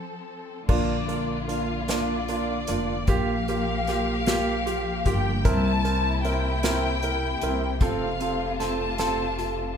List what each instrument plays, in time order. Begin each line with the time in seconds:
Already playing: string section F3 C4 A4
0.68 upright bass A#1, string section D3 A#3 F4, grand piano A#3 D4 F4, violin section D5, kick, crash
1.08 grand piano A#3 D4 F4, closed hi-hat
1.48 grand piano A#3 D4 F4, violin section F5, closed hi-hat
1.88 grand piano A#3 D4 F4, violin section D5, snare, closed hi-hat
2.28 grand piano A#3 D4 F4, closed hi-hat
2.67 upright bass F1, grand piano A#3 D4 F4, closed hi-hat
3.05 upright bass A#1, string section F3 G4, grand piano A#3 F4, violin section F5, kick, closed hi-hat
3.09 grand piano G4
3.48 grand piano A#3 F4 G4, closed hi-hat
3.87 grand piano A#3 F4 G4, snare, closed hi-hat
4.26 grand piano A#3 F4 G4, snare, closed hi-hat
4.66 grand piano F4 G4, closed hi-hat
5.05 upright bass G1, grand piano A#3 F4 G4, violin section G5, kick, closed hi-hat
5.43 upright bass C2, string section C3 E4, grand piano C4 E4 A#4, violin section A5, kick, closed hi-hat
5.84 grand piano C4 E4 A#4, closed hi-hat
6.23 grand piano C4 E4 A#4, violin section G5, closed hi-hat
6.63 grand piano C4 E4 A#4, snare, closed hi-hat
7.02 grand piano E4 A#4, closed hi-hat
7.41 upright bass C2, grand piano C4 E4 A#4, closed hi-hat
7.79 upright bass F1, string section A3 F4, grand piano C4 F4 A4, violin section F5, kick, closed hi-hat
8.20 grand piano C4 F4 A4, closed hi-hat
8.60 grand piano C4 F4 A4, violin section A5, snare, closed hi-hat
8.98 grand piano C4 F4 A4, snare, closed hi-hat
9.38 grand piano F4 A4, closed hi-hat